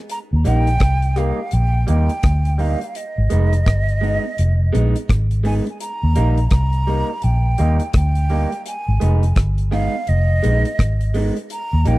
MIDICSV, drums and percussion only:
0, 0, Header, 1, 2, 480
1, 0, Start_track
1, 0, Tempo, 713436
1, 63, Time_signature, 4, 2, 24, 8
1, 8064, End_track
2, 0, Start_track
2, 0, Title_t, "Drums"
2, 64, Note_on_c, 9, 42, 88
2, 131, Note_off_c, 9, 42, 0
2, 303, Note_on_c, 9, 42, 68
2, 371, Note_off_c, 9, 42, 0
2, 452, Note_on_c, 9, 42, 46
2, 519, Note_off_c, 9, 42, 0
2, 539, Note_on_c, 9, 42, 84
2, 542, Note_on_c, 9, 36, 109
2, 547, Note_on_c, 9, 37, 103
2, 606, Note_off_c, 9, 42, 0
2, 609, Note_off_c, 9, 36, 0
2, 615, Note_off_c, 9, 37, 0
2, 689, Note_on_c, 9, 42, 41
2, 756, Note_off_c, 9, 42, 0
2, 782, Note_on_c, 9, 37, 54
2, 782, Note_on_c, 9, 42, 60
2, 849, Note_off_c, 9, 37, 0
2, 850, Note_off_c, 9, 42, 0
2, 1017, Note_on_c, 9, 42, 77
2, 1084, Note_off_c, 9, 42, 0
2, 1263, Note_on_c, 9, 42, 59
2, 1330, Note_off_c, 9, 42, 0
2, 1408, Note_on_c, 9, 42, 50
2, 1476, Note_off_c, 9, 42, 0
2, 1501, Note_on_c, 9, 42, 94
2, 1504, Note_on_c, 9, 36, 116
2, 1506, Note_on_c, 9, 37, 113
2, 1568, Note_off_c, 9, 42, 0
2, 1571, Note_off_c, 9, 36, 0
2, 1574, Note_off_c, 9, 37, 0
2, 1650, Note_on_c, 9, 42, 49
2, 1717, Note_off_c, 9, 42, 0
2, 1742, Note_on_c, 9, 46, 56
2, 1810, Note_off_c, 9, 46, 0
2, 1893, Note_on_c, 9, 42, 53
2, 1960, Note_off_c, 9, 42, 0
2, 1985, Note_on_c, 9, 42, 88
2, 2053, Note_off_c, 9, 42, 0
2, 2222, Note_on_c, 9, 42, 68
2, 2289, Note_off_c, 9, 42, 0
2, 2373, Note_on_c, 9, 42, 50
2, 2440, Note_off_c, 9, 42, 0
2, 2465, Note_on_c, 9, 36, 104
2, 2465, Note_on_c, 9, 42, 82
2, 2474, Note_on_c, 9, 37, 115
2, 2532, Note_off_c, 9, 36, 0
2, 2532, Note_off_c, 9, 42, 0
2, 2541, Note_off_c, 9, 37, 0
2, 2615, Note_on_c, 9, 42, 42
2, 2682, Note_off_c, 9, 42, 0
2, 2714, Note_on_c, 9, 46, 44
2, 2781, Note_off_c, 9, 46, 0
2, 2948, Note_on_c, 9, 42, 79
2, 3015, Note_off_c, 9, 42, 0
2, 3193, Note_on_c, 9, 42, 63
2, 3260, Note_off_c, 9, 42, 0
2, 3334, Note_on_c, 9, 42, 54
2, 3402, Note_off_c, 9, 42, 0
2, 3427, Note_on_c, 9, 36, 106
2, 3429, Note_on_c, 9, 42, 101
2, 3434, Note_on_c, 9, 37, 108
2, 3495, Note_off_c, 9, 36, 0
2, 3496, Note_off_c, 9, 42, 0
2, 3501, Note_off_c, 9, 37, 0
2, 3572, Note_on_c, 9, 42, 51
2, 3639, Note_off_c, 9, 42, 0
2, 3665, Note_on_c, 9, 46, 66
2, 3732, Note_off_c, 9, 46, 0
2, 3814, Note_on_c, 9, 42, 53
2, 3881, Note_off_c, 9, 42, 0
2, 3905, Note_on_c, 9, 42, 93
2, 3973, Note_off_c, 9, 42, 0
2, 4141, Note_on_c, 9, 42, 66
2, 4209, Note_off_c, 9, 42, 0
2, 4290, Note_on_c, 9, 42, 46
2, 4357, Note_off_c, 9, 42, 0
2, 4377, Note_on_c, 9, 42, 87
2, 4382, Note_on_c, 9, 36, 108
2, 4386, Note_on_c, 9, 37, 109
2, 4445, Note_off_c, 9, 42, 0
2, 4449, Note_off_c, 9, 36, 0
2, 4453, Note_off_c, 9, 37, 0
2, 4527, Note_on_c, 9, 42, 43
2, 4594, Note_off_c, 9, 42, 0
2, 4625, Note_on_c, 9, 46, 45
2, 4692, Note_off_c, 9, 46, 0
2, 4857, Note_on_c, 9, 42, 75
2, 4924, Note_off_c, 9, 42, 0
2, 5099, Note_on_c, 9, 42, 61
2, 5166, Note_off_c, 9, 42, 0
2, 5245, Note_on_c, 9, 42, 48
2, 5312, Note_off_c, 9, 42, 0
2, 5338, Note_on_c, 9, 42, 100
2, 5342, Note_on_c, 9, 36, 107
2, 5343, Note_on_c, 9, 37, 107
2, 5405, Note_off_c, 9, 42, 0
2, 5409, Note_off_c, 9, 36, 0
2, 5410, Note_off_c, 9, 37, 0
2, 5486, Note_on_c, 9, 42, 54
2, 5553, Note_off_c, 9, 42, 0
2, 5580, Note_on_c, 9, 46, 61
2, 5648, Note_off_c, 9, 46, 0
2, 5734, Note_on_c, 9, 42, 54
2, 5802, Note_off_c, 9, 42, 0
2, 5824, Note_on_c, 9, 42, 89
2, 5891, Note_off_c, 9, 42, 0
2, 6063, Note_on_c, 9, 42, 68
2, 6131, Note_off_c, 9, 42, 0
2, 6210, Note_on_c, 9, 42, 46
2, 6277, Note_off_c, 9, 42, 0
2, 6298, Note_on_c, 9, 42, 81
2, 6299, Note_on_c, 9, 36, 103
2, 6307, Note_on_c, 9, 37, 102
2, 6366, Note_off_c, 9, 42, 0
2, 6367, Note_off_c, 9, 36, 0
2, 6374, Note_off_c, 9, 37, 0
2, 6445, Note_on_c, 9, 42, 46
2, 6512, Note_off_c, 9, 42, 0
2, 6542, Note_on_c, 9, 37, 54
2, 6542, Note_on_c, 9, 46, 46
2, 6609, Note_off_c, 9, 37, 0
2, 6609, Note_off_c, 9, 46, 0
2, 6776, Note_on_c, 9, 42, 75
2, 6843, Note_off_c, 9, 42, 0
2, 7021, Note_on_c, 9, 42, 64
2, 7089, Note_off_c, 9, 42, 0
2, 7166, Note_on_c, 9, 42, 53
2, 7234, Note_off_c, 9, 42, 0
2, 7260, Note_on_c, 9, 36, 115
2, 7261, Note_on_c, 9, 42, 99
2, 7266, Note_on_c, 9, 37, 107
2, 7327, Note_off_c, 9, 36, 0
2, 7328, Note_off_c, 9, 42, 0
2, 7333, Note_off_c, 9, 37, 0
2, 7406, Note_on_c, 9, 42, 51
2, 7473, Note_off_c, 9, 42, 0
2, 7498, Note_on_c, 9, 46, 64
2, 7565, Note_off_c, 9, 46, 0
2, 7647, Note_on_c, 9, 42, 56
2, 7715, Note_off_c, 9, 42, 0
2, 7738, Note_on_c, 9, 42, 88
2, 7805, Note_off_c, 9, 42, 0
2, 7977, Note_on_c, 9, 42, 70
2, 8044, Note_off_c, 9, 42, 0
2, 8064, End_track
0, 0, End_of_file